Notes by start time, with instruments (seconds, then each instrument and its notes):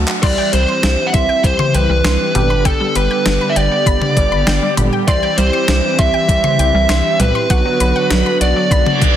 Already playing: analog polysynth F#3 A3 D4 F#4
0.08 synth arpeggio sound F#5, clap
0.23 analog synth bass C2, analog polysynth G3 C4 E4 G4, analog synth pad C4, lead electric guitar D5, synth arpeggio sound C6, kick, closed hi-hat, crash
0.38 synth arpeggio sound G5
0.53 analog synth bass C2, synth arpeggio sound G3, lead electric guitar C5, closed hi-hat
0.68 synth arpeggio sound C6
0.83 analog synth bass C2, snare, closed hi-hat
1.07 lead electric guitar F#5
1.14 analog synth bass C2, lead electric guitar E5, synth arpeggio sound C6, kick, closed hi-hat
1.29 synth arpeggio sound G5
1.44 analog synth bass C2, lead electric guitar C5, kick, closed hi-hat
1.59 synth arpeggio sound C6, mid tom
1.74 analog synth bass C2, lead electric guitar B4, synth arpeggio sound G5, closed hi-hat
1.90 analog synth bass C2, synth arpeggio sound G3
2.04 analog synth bass C2, synth arpeggio sound C6, snare, closed hi-hat
2.35 analog synth bass G1, analog synth pad D3 B3, synth arpeggio sound G3, analog polysynth G3 B3 D4 G4, closed hi-hat, mid tom
2.50 synth arpeggio sound B5
2.65 lead electric guitar A4, synth arpeggio sound G5, kick, closed hi-hat
2.80 synth arpeggio sound G3
2.95 analog synth bass G1, lead electric guitar B4, synth arpeggio sound B5, closed hi-hat
3.11 synth arpeggio sound G5
3.26 analog synth bass G1, synth arpeggio sound G3, snare, closed hi-hat
3.41 synth arpeggio sound B5
3.50 lead electric guitar E5
3.56 analog synth bass G1, lead electric guitar D5, synth arpeggio sound G5, closed hi-hat
3.71 synth arpeggio sound G3
3.86 analog synth bass G1, synth arpeggio sound B5, kick, closed hi-hat
4.02 mid tom
4.17 analog synth bass G1, synth arpeggio sound G3, kick, closed hi-hat
4.32 analog synth bass G1, synth arpeggio sound B5
4.47 analog synth bass G1, synth arpeggio sound G5, snare, closed hi-hat
4.62 synth arpeggio sound G3
4.77 analog synth bass G1, synth arpeggio sound B5, closed hi-hat, mid tom
4.93 synth arpeggio sound G5
5.08 analog synth bass C2, analog synth pad E3 C4, analog polysynth G3 C4 E4 G4, lead electric guitar D5, synth arpeggio sound C6, kick, closed hi-hat
5.23 synth arpeggio sound G5
5.38 analog synth bass C2, synth arpeggio sound G3, lead electric guitar C5, closed hi-hat
5.53 synth arpeggio sound C6
5.68 analog synth bass C2, snare, closed hi-hat
5.99 analog synth bass C2, lead electric guitar E5, synth arpeggio sound C6, kick, closed hi-hat
6.14 synth arpeggio sound G5
6.29 analog synth bass C2, kick, closed hi-hat
6.44 synth arpeggio sound C6, mid tom
6.59 analog synth bass C2, synth arpeggio sound G5, closed hi-hat
6.74 analog synth bass C2, synth arpeggio sound G3
6.89 analog synth bass C2, synth arpeggio sound C6, snare, closed hi-hat
7.20 analog synth bass C2, synth arpeggio sound G3, lead electric guitar B4, closed hi-hat, mid tom
7.35 synth arpeggio sound C6
7.50 analog synth bass B1, analog synth pad D3 F#3 B3 F#4, analog polysynth F#3 B3 D4 F#4, synth arpeggio sound F#5, kick, closed hi-hat
7.65 synth arpeggio sound F#3
7.80 analog synth bass B1, synth arpeggio sound B5, closed hi-hat
7.96 synth arpeggio sound F#5
8.10 analog synth bass B1, synth arpeggio sound F#3, snare, closed hi-hat
8.26 synth arpeggio sound B5
8.41 analog synth bass B1, lead electric guitar D5, synth arpeggio sound F#5, closed hi-hat
8.56 synth arpeggio sound F#3
8.71 analog synth bass B1, synth arpeggio sound B5, kick, closed hi-hat, reverse cymbal
8.86 mid tom
9.02 analog synth bass B1, synth arpeggio sound F#3, kick, closed hi-hat